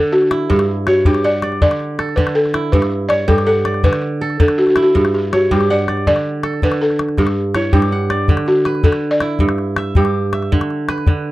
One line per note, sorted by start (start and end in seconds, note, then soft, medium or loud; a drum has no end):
0.00 0.55 D3 medium
0.00 0.25 G4 medium
0.00 0.14 A4 medium
0.00 1.08 A4 medium
0.00 0.23 E5 medium
0.12 0.51 F#4 medium
0.22 calabash click soft
0.31 1.88 E4 medium
0.31 calabash click medium
0.50 1.05 G2 medium
0.50 0.85 G4 medium
0.50 calabash thump medium
0.59 calabash click soft
0.87 1.06 F#4 medium
0.87 1.49 C#5 medium
0.87 calabash click medium
1.05 1.66 G2 medium
1.05 1.23 G4 medium
1.05 2.47 G4 medium
1.05 calabash thump medium
1.15 calabash click soft
1.24 1.61 D5 medium
1.24 2.21 F#5 medium
1.42 2.54 D5 medium
1.42 calabash click soft
1.52 calabash click soft
1.62 2.16 D3 medium
1.62 2.19 D5 loud
1.62 calabash thump medium
1.71 calabash click soft
1.80 calabash click soft
1.99 3.31 A4 medium
1.99 calabash click soft
2.09 calabash click soft
2.16 2.78 D3 medium
2.16 2.36 B4 medium
2.16 calabash thump medium
2.27 calabash click soft
2.35 2.74 A4 medium
2.46 calabash click soft
2.54 4.10 E4 medium
2.54 calabash click medium
2.72 3.27 G2 medium
2.72 3.11 B4 medium
2.72 calabash thump medium
2.82 calabash click soft
2.92 calabash click soft
3.09 3.71 C#5 medium
3.09 3.26 D5 medium
3.09 calabash click medium
3.28 3.89 G2 medium
3.28 4.69 G4 medium
3.28 3.45 A4 medium
3.28 calabash thump medium
3.38 calabash click soft
3.47 3.85 A4 medium
3.47 4.43 F#5 medium
3.65 4.76 D5 medium
3.65 calabash click medium
3.74 calabash click soft
3.83 4.39 D3 medium
3.83 4.41 B4 loud
3.83 calabash thump medium
3.93 calabash click soft
4.02 calabash click soft
4.21 5.53 A4 medium
4.30 calabash click soft
4.40 5.00 D3 medium
4.40 4.59 A4 medium
4.40 calabash thump medium
4.48 calabash click soft
4.58 4.68 F#4 medium
4.67 4.81 F#4 medium
4.67 calabash click soft
4.76 6.33 E4 medium
4.76 calabash click medium
4.83 4.95 F#4 medium
4.95 5.50 G2 medium
4.95 5.13 G4 medium
4.95 calabash thump medium
5.05 calabash click soft
5.14 5.33 G4 medium
5.14 calabash click soft
5.33 5.50 F#4 medium
5.33 5.94 C#5 medium
5.33 calabash click medium
5.51 6.11 G2 medium
5.51 6.93 G4 medium
5.51 5.70 G4 medium
5.51 calabash thump soft
5.61 calabash click soft
5.70 6.06 D5 medium
5.70 6.67 F#5 medium
5.88 6.99 D5 medium
5.88 calabash click soft
5.97 calabash click soft
6.07 6.62 D3 medium
6.07 6.59 D5 loud
6.07 calabash thump soft
6.16 calabash click soft
6.43 7.75 A4 medium
6.43 calabash click medium
6.53 calabash click soft
6.62 7.23 D3 medium
6.62 6.72 B4 medium
6.62 calabash thump medium
6.72 calabash click soft
6.81 7.19 A4 medium
6.90 calabash click soft
6.99 calabash click medium
7.09 calabash click soft
7.18 7.72 G2 medium
7.18 7.56 G4 medium
7.18 calabash thump medium
7.18 calabash click soft
7.27 calabash click soft
7.55 7.74 E4 medium
7.55 8.16 C#5 medium
7.55 calabash click medium
7.73 8.34 G2 medium
7.73 8.13 D4 medium
7.73 9.14 G4 medium
7.73 calabash thump medium
7.73 calabash click soft
7.82 calabash click soft
7.92 8.89 F#5 medium
7.92 calabash click soft
8.10 9.21 D5 medium
8.10 calabash click medium
8.28 8.83 D3 medium
8.28 calabash thump medium
8.37 calabash click soft
8.46 8.86 F#4 medium
8.46 calabash click soft
8.65 9.89 B4 medium
8.65 calabash click medium
8.75 calabash click soft
8.83 9.45 D3 medium
8.83 9.13 A4 medium
8.83 calabash thump medium
8.92 calabash click soft
9.11 10.00 D5 loud
9.11 calabash click soft
9.20 10.78 E4 medium
9.20 calabash click medium
9.39 9.95 G2 medium
9.39 calabash thump medium
9.49 calabash click soft
9.58 calabash click soft
9.76 10.33 E5 medium
9.76 calabash click medium
9.95 10.56 G2 medium
9.95 11.32 G4 medium
9.95 calabash thump medium
10.05 calabash click soft
10.33 11.32 E5 medium
10.33 calabash click medium
10.43 calabash click soft
10.52 11.06 D3 medium
10.52 calabash thump medium
10.61 calabash click soft
10.70 calabash click soft
10.89 11.32 B4 medium
10.89 calabash click medium
10.98 calabash click soft
11.07 11.32 D3 medium
11.07 calabash thump medium